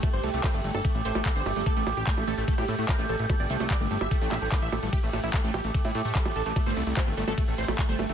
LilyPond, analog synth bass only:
\new Staff \with { instrumentName = "Analog synth bass" } { \clef bass \time 4/4 \key a \minor \tempo 4 = 147 r16 g,,16 c,16 c,16 r16 g,,16 g,,16 g,,16 r16 a,,16 a,,16 a,,16 r16 g,,16 g,,16 g,,16 | r16 a,,16 a,,16 a,,16 r16 a,,16 a,,16 a,,16 r16 a,16 a,16 a,16 r16 a,,16 a,,16 a,,16 | r16 g,,16 c,16 c,16 r16 g,,16 g,,16 g,,16 r16 a,,16 a,,16 a,,16 r16 a,,16 a,,16 a,,16 | r16 a,,16 a,,16 a,,16 r16 a,,16 a,,16 a,,16 r16 a,16 a,16 a,16 r16 a,,16 a,,16 a,,16 |
r16 g,,16 c,16 c,16 r16 g,,16 g,,16 g,,16 r16 a,,16 a,,16 a,,16 r16 g,,16 g,,16 g,,16 | }